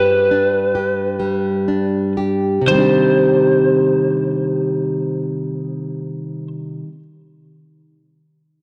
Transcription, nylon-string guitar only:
0.00 2.61 G2 medium
0.00 0.75 G4 soft
0.31 1.68 D4 soft
0.75 2.17 G4 soft
1.20 2.71 G3 soft
1.68 2.77 D4 soft
2.17 2.81 G4 soft
2.61 6.83 C3 medium
2.67 6.88 D#3 medium
2.71 6.92 G3 medium
2.71 6.95 C4 soft
2.78 6.99 D4 medium
2.78 7.03 G4 soft

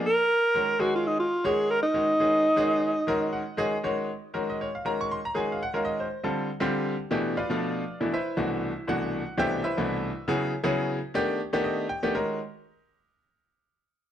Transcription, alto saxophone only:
0.06 0.82 A#4 loud
0.81 0.95 F#4 medium
0.96 1.08 F4 medium
1.07 1.19 D#4 medium
1.19 1.47 F4 medium
1.46 1.72 G#4 medium
1.71 1.82 A#4 medium
1.83 3.55 D#4 medium

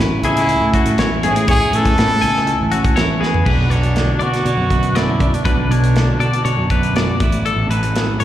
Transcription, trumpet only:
0.24 0.95 E4 loud
1.24 1.47 G#4 loud
1.50 1.77 G#4 loud
1.76 3.23 A4 loud
3.48 4.24 D4 medium
4.22 4.98 F#4 loud
4.96 5.36 E4 medium
5.35 6.84 D4 medium

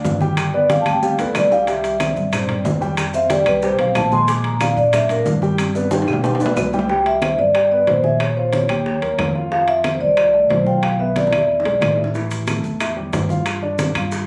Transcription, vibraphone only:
0.54 0.70 D5 medium
0.71 0.81 F5 medium
0.81 0.92 A5 medium
0.93 1.03 G5 medium
1.04 1.19 F5 medium
1.20 1.35 A4 medium
1.36 1.51 D5 medium
1.52 1.68 F5 loud
1.69 2.29 E5 medium
3.14 3.30 E5 medium
3.31 3.46 D5 medium
3.47 3.63 B4 medium
3.64 3.79 C5 medium
3.80 3.95 F5 medium
3.97 4.12 A5 medium
4.13 4.28 C6 loud
4.29 4.45 D6 loud
4.45 4.61 A#5 medium
4.61 4.77 F5 medium
4.77 4.93 D5 medium
4.94 5.09 E5 loud
5.10 5.20 A#4 medium
6.90 7.07 G5 loud
7.06 7.40 E5 medium
7.39 7.70 D5 medium
7.71 7.88 D5 medium
7.88 8.05 C5 medium
8.04 8.21 E5 medium
8.20 8.37 C#5 medium
8.36 8.52 C5 medium
8.53 9.31 C#5 medium
9.52 9.59 F5 medium
9.68 9.92 E5 medium
9.94 10.01 C5 medium
10.01 10.31 D5 medium
10.34 10.51 D5 medium
10.50 10.65 C5 medium
10.67 10.84 G5 medium
10.83 11.00 F5 medium
10.99 11.15 E5 medium
11.16 11.94 D5 medium

